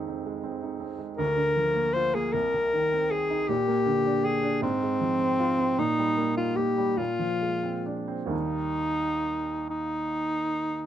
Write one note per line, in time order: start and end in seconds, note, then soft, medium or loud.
0.00 1.15 F2 medium
0.00 1.21 C3 soft
0.00 1.22 D#3 soft
0.00 0.26 G#3 soft
0.00 0.07 C4 soft
0.00 0.20 D#4 soft
0.07 0.37 C4 soft
0.26 0.55 G#3 soft
0.44 0.74 C4 soft
0.63 0.92 D#4 soft
0.80 1.10 C4 soft
0.99 1.18 G#3 soft
1.17 2.30 D2 medium
1.17 1.95 A#4 loud
1.36 1.67 D3 soft
1.57 1.87 F3 soft
1.75 2.06 A#3 soft
1.93 2.26 F4 medium
1.93 2.16 C5 loud
2.14 2.34 A#3 medium
2.14 2.34 G#4 medium
2.33 3.46 C2 medium
2.33 3.12 A#4 loud
2.54 2.85 C3 soft
2.73 3.04 D#3 soft
2.92 3.23 C4 soft
3.11 3.42 G#4 medium
3.11 3.50 G#4 medium
3.30 3.49 D#4 medium
3.49 4.58 A#2 medium
3.49 4.26 G4 loud
3.68 3.98 A#3 soft
3.86 4.16 D3 medium
4.05 4.35 D4 medium
4.23 4.54 G4 medium
4.23 4.62 G#4 loud
4.43 4.62 D4 medium
4.62 5.73 G#2 medium
4.62 5.80 C4 loud
4.83 5.13 G#3 soft
5.01 5.31 F3 soft
5.20 5.50 C4 soft
5.39 5.70 F4 medium
5.58 5.77 C4 medium
5.78 6.96 A#2 medium
5.78 6.37 D#4 loud
5.98 6.29 G3 soft
6.17 6.49 A#3 medium
6.36 6.69 D#4 medium
6.36 6.57 F4 medium
6.56 6.91 A#3 soft
6.56 6.99 G4 medium
6.78 6.99 G3 soft
6.97 8.27 A#2 medium
6.97 7.98 F4 loud
7.19 7.54 F3 soft
7.41 7.77 G#3 soft
7.63 7.99 C4 soft
7.86 8.23 D4 soft
8.08 8.31 C4 soft
8.26 10.86 D#2 medium
8.26 10.86 G3 soft
8.26 10.86 A#3 soft
8.26 10.86 D#4 soft
8.30 9.66 D#4 loud
9.69 10.86 D#4 medium